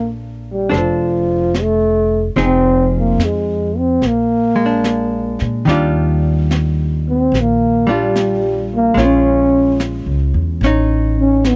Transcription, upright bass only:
0, 0, Header, 1, 2, 480
1, 0, Start_track
1, 0, Key_signature, -2, "major"
1, 0, Tempo, 825309
1, 1383, Time_signature, 4, 2, 24, 8
1, 3304, Key_signature, -3, "major"
1, 6722, End_track
2, 0, Start_track
2, 0, Title_t, "Upright bass"
2, 0, Program_c, 0, 32
2, 0, Note_on_c, 0, 34, 67
2, 395, Note_off_c, 0, 34, 0
2, 417, Note_on_c, 0, 29, 67
2, 1357, Note_off_c, 0, 29, 0
2, 1372, Note_on_c, 0, 29, 66
2, 1835, Note_off_c, 0, 29, 0
2, 1848, Note_on_c, 0, 41, 58
2, 2313, Note_off_c, 0, 41, 0
2, 2335, Note_on_c, 0, 34, 67
2, 3126, Note_off_c, 0, 34, 0
2, 3148, Note_on_c, 0, 46, 51
2, 3291, Note_off_c, 0, 46, 0
2, 3295, Note_on_c, 0, 39, 76
2, 4236, Note_off_c, 0, 39, 0
2, 4256, Note_on_c, 0, 34, 74
2, 5195, Note_off_c, 0, 34, 0
2, 5208, Note_on_c, 0, 34, 78
2, 5830, Note_off_c, 0, 34, 0
2, 5852, Note_on_c, 0, 37, 58
2, 6005, Note_off_c, 0, 37, 0
2, 6015, Note_on_c, 0, 40, 63
2, 6165, Note_off_c, 0, 40, 0
2, 6171, Note_on_c, 0, 33, 77
2, 6722, Note_off_c, 0, 33, 0
2, 6722, End_track
0, 0, End_of_file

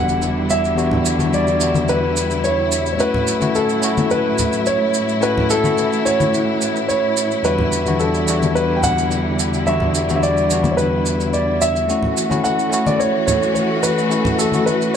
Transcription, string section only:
0, 0, Header, 1, 2, 480
1, 0, Start_track
1, 0, Tempo, 555556
1, 672, Time_signature, 4, 2, 24, 8
1, 12929, End_track
2, 0, Start_track
2, 0, Title_t, "String section"
2, 0, Program_c, 0, 48
2, 0, Note_on_c, 0, 50, 70
2, 0, Note_on_c, 0, 55, 65
2, 0, Note_on_c, 0, 64, 82
2, 2556, Note_off_c, 0, 55, 0
2, 2557, Note_off_c, 0, 50, 0
2, 2588, Note_on_c, 0, 45, 69
2, 2589, Note_on_c, 0, 54, 66
2, 4491, Note_off_c, 0, 54, 0
2, 4514, Note_on_c, 0, 52, 64
2, 6395, Note_off_c, 0, 45, 0
2, 6414, Note_off_c, 0, 52, 0
2, 6429, Note_on_c, 0, 50, 72
2, 6430, Note_on_c, 0, 55, 63
2, 10236, Note_off_c, 0, 50, 0
2, 10236, Note_off_c, 0, 55, 0
2, 10236, Note_off_c, 0, 64, 0
2, 10275, Note_on_c, 0, 57, 69
2, 10276, Note_on_c, 0, 52, 73
2, 10278, Note_on_c, 0, 66, 77
2, 12929, Note_off_c, 0, 52, 0
2, 12929, Note_off_c, 0, 57, 0
2, 12929, Note_off_c, 0, 66, 0
2, 12929, End_track
0, 0, End_of_file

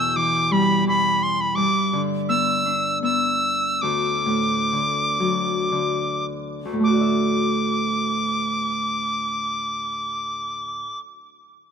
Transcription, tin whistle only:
0, 0, Header, 1, 2, 480
1, 0, Start_track
1, 0, Key_signature, 2, "major"
1, 0, Tempo, 719424
1, 1046, Time_signature, 3, 2, 24, 8
1, 2018, Tempo, 800000
1, 2498, Tempo, 892857
1, 2978, Tempo, 1003344
1, 3458, Tempo, 1125704
1, 6014, End_track
2, 0, Start_track
2, 0, Title_t, "Tin whistle"
2, 0, Program_c, 0, 75
2, 0, Note_on_c, 0, 88, 72
2, 108, Note_on_c, 0, 86, 72
2, 118, Note_off_c, 0, 88, 0
2, 347, Note_on_c, 0, 83, 64
2, 357, Note_off_c, 0, 86, 0
2, 580, Note_off_c, 0, 83, 0
2, 588, Note_on_c, 0, 83, 69
2, 820, Note_on_c, 0, 84, 61
2, 830, Note_off_c, 0, 83, 0
2, 939, Note_on_c, 0, 83, 67
2, 949, Note_off_c, 0, 84, 0
2, 1037, Note_on_c, 0, 86, 79
2, 1047, Note_off_c, 0, 83, 0
2, 1344, Note_off_c, 0, 86, 0
2, 1528, Note_on_c, 0, 88, 73
2, 1993, Note_off_c, 0, 88, 0
2, 2025, Note_on_c, 0, 88, 69
2, 2493, Note_on_c, 0, 86, 66
2, 2502, Note_off_c, 0, 88, 0
2, 3687, Note_off_c, 0, 86, 0
2, 3933, Note_on_c, 0, 86, 56
2, 5704, Note_off_c, 0, 86, 0
2, 6014, End_track
0, 0, End_of_file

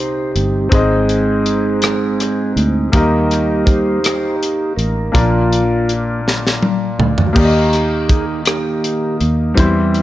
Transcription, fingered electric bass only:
0, 0, Header, 1, 2, 480
1, 0, Start_track
1, 0, Key_signature, -3, "major"
1, 0, Tempo, 738007
1, 468, Time_signature, 6, 3, 24, 8
1, 6519, End_track
2, 0, Start_track
2, 0, Title_t, "Fingered electric bass"
2, 0, Program_c, 0, 33
2, 0, Note_on_c, 0, 36, 82
2, 204, Note_off_c, 0, 36, 0
2, 230, Note_on_c, 0, 31, 65
2, 449, Note_off_c, 0, 31, 0
2, 468, Note_on_c, 0, 32, 84
2, 1640, Note_off_c, 0, 32, 0
2, 1667, Note_on_c, 0, 38, 70
2, 1887, Note_off_c, 0, 38, 0
2, 1910, Note_on_c, 0, 39, 86
2, 3082, Note_off_c, 0, 39, 0
2, 3104, Note_on_c, 0, 33, 63
2, 3326, Note_off_c, 0, 33, 0
2, 3345, Note_on_c, 0, 34, 85
2, 4521, Note_off_c, 0, 34, 0
2, 4545, Note_on_c, 0, 38, 65
2, 4767, Note_off_c, 0, 38, 0
2, 4787, Note_on_c, 0, 39, 87
2, 5963, Note_off_c, 0, 39, 0
2, 5990, Note_on_c, 0, 39, 76
2, 6211, Note_off_c, 0, 39, 0
2, 6228, Note_on_c, 0, 40, 95
2, 6519, Note_off_c, 0, 40, 0
2, 6519, End_track
0, 0, End_of_file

